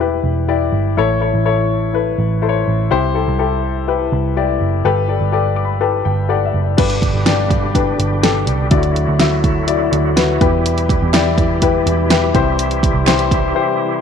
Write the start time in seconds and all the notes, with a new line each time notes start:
Already playing: E1 E3 D5 G5
0.00 E4 G4 B4
0.24 E1
0.48 E4 G4 D5
0.73 G1
0.97 A1 A2 E4 A4 C#5
1.20 E4 A4 C#5
1.34 A1
1.45 E4 A4 C#5
1.93 E4 A4 B4
2.18 A1
2.42 E4 A4 C5
2.49 C#5
2.68 A1
2.91 C2 C3 E4 G4 C5
3.15 E4 G4 A4
3.28 C2
3.39 E4 G4 A4
3.88 E4 G4 B4
4.12 C2
4.37 E4 G4 D5
4.60 F#1
4.85 G1 G2 G4 A4 B4
5.08 G4 A4 D5
5.21 G1
5.32 G4 A4 D5
5.56 D6
5.65 B5
5.81 G4 A4 B4 A5
6.05 G1 G5
6.29 G4 A4 D5 F#5
6.45 E5
6.54 F#1
6.61 D5
6.77 G1 G2 B2 D3 G3 D4 G4 B4, kick, closed hi-hat, crash
6.90 closed hi-hat
7.02 kick, closed hi-hat
7.14 G1
7.26 D4 G4 D5, snare, closed hi-hat
7.50 kick, closed hi-hat
7.74 D4 G4 B4, kick, closed hi-hat
8.00 G1, closed hi-hat
8.23 D4 G4 A4, snare, closed hi-hat
8.47 C2, closed hi-hat
8.71 D2 D3 F#3 A3 E4 F#4 D5, kick, closed hi-hat
8.83 closed hi-hat
8.96 closed hi-hat
9.08 D2
9.19 E4 F#4 E5, snare, closed hi-hat
9.44 kick, closed hi-hat
9.67 E4 F#4 D5, closed hi-hat
9.92 D2, closed hi-hat
10.16 E4 F#4 B4, snare, closed hi-hat
10.41 E2 B2 E3 G3 E4 G4 B4, kick, closed hi-hat
10.66 closed hi-hat
10.78 closed hi-hat
10.89 kick, closed hi-hat
11.02 E2
11.13 E4 G4 D5, snare, clap, closed hi-hat
11.38 kick, closed hi-hat
11.62 E4 G4 B4, kick, closed hi-hat
11.86 E2, closed hi-hat
12.10 E4 G4 B4, snare, clap, closed hi-hat
12.34 C2 C3 E3 E4 G4 C5, kick, closed hi-hat
12.59 closed hi-hat
12.71 closed hi-hat
12.83 kick, closed hi-hat
12.94 C2
13.06 E4 G4 C5, snare, clap, closed hi-hat
13.19 closed hi-hat
13.31 kick, closed hi-hat
13.55 E4 G4 C5